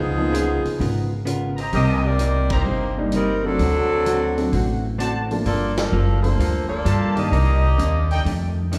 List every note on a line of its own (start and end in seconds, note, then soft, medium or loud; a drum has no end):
0.00 0.60 C#2 medium
0.00 0.19 C#3 soft
0.00 1.11 F3 loud
0.00 0.20 B3 soft
0.00 1.11 B3 medium
0.00 1.12 D#4 medium
0.00 0.20 F4 soft
0.00 1.11 G#4 medium
0.00 0.20 A#4 soft
0.17 0.31 F3 medium
0.17 0.31 A#3 soft
0.17 0.32 B3 soft
0.17 0.32 D#4 medium
0.32 0.65 C#3 medium
0.32 0.66 B3 medium
0.32 0.66 F4 medium
0.32 0.66 A#4 medium
0.32 closed hi-hat soft
0.65 muted upright bass stroke soft
0.65 open hi-hat soft
0.78 1.69 G#1 medium
0.78 1.12 C#3 soft
0.78 1.13 B3 medium
0.78 1.13 F4 medium
0.78 1.13 A#4 medium
0.78 open hi-hat soft
1.25 1.59 C#3 medium
1.25 1.59 B3 medium
1.25 1.59 F4 medium
1.25 1.59 A#4 medium
1.25 closed hi-hat medium
1.57 2.16 G4 medium
1.57 2.16 C5 medium
1.57 2.16 D#5 medium
1.57 2.16 A#5 medium
1.57 open hi-hat soft
1.73 2.62 C2 medium
1.73 2.06 C3 soft
1.73 2.06 G3 soft
1.73 2.06 A#3 soft
1.73 2.03 C4 medium
1.73 2.07 D#4 soft
1.73 2.03 G4 medium
1.73 2.03 A#4 medium
1.73 2.03 D#5 loud
1.73 open hi-hat soft
2.06 2.52 C4 medium
2.06 2.52 G4 medium
2.06 2.52 A#4 medium
2.06 2.52 D5 medium
2.19 2.52 C3 medium
2.19 2.53 G3 medium
2.19 2.53 A#3 medium
2.19 2.53 D#4 medium
2.19 closed hi-hat soft
2.50 2.99 A#3 medium
2.50 2.99 D#4 medium
2.50 2.61 G4 medium
2.50 2.99 G4 medium
2.50 2.61 C5 medium
2.50 2.99 C5 medium
2.50 2.61 D#5 medium
2.50 2.61 A#5 medium
2.50 kick medium
2.50 ride medium
2.66 3.55 G1 medium
2.66 2.99 C3 soft
2.66 3.00 G3 soft
2.66 3.00 A#3 soft
2.66 3.00 D#4 soft
2.97 3.11 G3 medium
2.97 3.11 A#3 medium
2.97 3.11 D4 medium
2.97 3.12 D#4 medium
3.12 3.45 C3 medium
3.12 3.46 G3 medium
3.12 3.46 A#3 medium
3.12 3.43 C4 medium
3.12 3.46 D#4 medium
3.12 3.43 D#4 medium
3.12 3.43 A#4 medium
3.12 closed hi-hat soft
3.16 3.44 G3 medium
3.44 3.58 F#3 medium
3.44 4.85 F#3 loud
3.44 3.58 A3 medium
3.44 3.58 C4 medium
3.44 4.85 C4 medium
3.44 3.58 D4 medium
3.44 4.84 D4 medium
3.44 4.84 A4 loud
3.59 4.48 D2 medium
3.59 3.93 D3 soft
3.59 3.93 A3 soft
3.59 3.94 C4 soft
3.59 open hi-hat soft
3.63 3.94 F#4 soft
4.06 4.39 D3 medium
4.06 4.39 A3 medium
4.06 4.40 C4 medium
4.06 4.40 F#4 medium
4.06 closed hi-hat soft
4.37 4.51 F#3 medium
4.37 4.51 A3 medium
4.37 4.51 C4 medium
4.37 4.52 D4 medium
4.37 open hi-hat soft
4.52 5.42 A1 medium
4.52 4.85 D3 medium
4.52 4.86 A3 soft
4.52 4.86 C4 soft
4.52 4.87 F#4 medium
4.52 open hi-hat soft
4.98 5.32 D3 medium
4.98 5.32 A3 medium
4.98 5.32 C4 medium
4.98 5.20 F#4 medium
4.98 5.33 F#4 medium
4.98 5.20 C5 medium
4.98 5.20 D5 medium
4.98 5.20 A5 medium
4.98 closed hi-hat soft
5.31 5.45 F3 medium
5.31 5.45 A3 medium
5.31 5.45 A#3 medium
5.31 5.45 D4 medium
5.31 open hi-hat soft
5.45 5.89 G1 medium
5.45 5.79 G3 soft
5.45 5.75 A#3 medium
5.45 5.79 A#3 soft
5.45 5.76 F4 medium
5.45 5.79 F4 soft
5.45 5.76 A4 medium
5.45 5.80 A4 soft
5.45 5.76 D5 medium
5.45 open hi-hat soft
5.77 6.24 F3 medium
5.77 6.24 D4 medium
5.77 6.21 A4 medium
5.77 6.24 A#4 medium
5.77 snare medium
5.77 ride medium
5.92 6.36 F#1 medium
5.92 6.25 G3 soft
5.92 6.26 A#3 medium
5.92 6.26 F4 medium
5.92 6.26 A4 medium
6.22 6.38 F3 soft
6.22 6.38 A3 soft
6.22 6.66 A#3 medium
6.22 6.38 A#3 soft
6.22 6.38 D4 soft
6.22 6.67 F4 medium
6.22 6.66 A4 medium
6.22 6.67 C5 medium
6.22 open hi-hat soft
6.38 6.82 D2 medium
6.38 6.72 G3 soft
6.38 6.72 A#3 soft
6.38 6.73 F4 medium
6.38 6.73 A4 soft
6.38 open hi-hat soft
6.68 7.13 A#3 medium
6.68 7.13 F4 medium
6.68 7.13 A4 medium
6.68 7.13 D5 medium
6.85 7.29 G2 medium
6.85 7.18 G3 medium
6.85 7.19 A#3 medium
6.85 7.19 F4 medium
6.85 7.32 G4 medium
6.85 7.19 A4 medium
6.85 7.30 A#4 medium
6.85 7.32 F5 medium
6.85 7.32 A5 medium
6.85 closed hi-hat soft
7.16 7.31 D#3 medium
7.16 7.31 G3 soft
7.16 7.31 A#3 soft
7.16 8.26 A#3 medium
7.16 7.31 D4 medium
7.16 8.57 G4 medium
7.16 8.57 D5 medium
7.16 8.58 D#5 loud
7.16 open hi-hat soft
7.31 7.75 C2 medium
7.31 7.65 C3 soft
7.31 7.66 D#3 soft
7.31 7.66 A#3 soft
7.31 7.66 D4 soft
7.31 8.04 D#4 medium
7.31 8.04 A#4 medium
7.31 8.04 C5 medium
7.31 8.04 A#5 medium
7.31 open hi-hat soft
7.78 8.23 D#2 medium
7.78 8.11 C3 medium
7.78 8.12 D#3 medium
7.78 8.12 A#3 medium
7.78 8.12 D4 medium
7.78 closed hi-hat soft
8.10 8.21 D#4 medium
8.10 8.21 A4 medium
8.10 8.21 D5 medium
8.10 8.21 G5 loud
8.10 open hi-hat soft
8.25 8.58 F2 soft
8.25 8.79 F2 medium
8.25 8.59 D#3 soft
8.25 8.59 A3 medium
8.25 8.59 D4 medium
8.25 open hi-hat soft
8.72 8.79 F2 medium
8.72 8.79 D#3 medium
8.72 8.79 A3 medium
8.72 8.79 D4 medium
8.72 closed hi-hat soft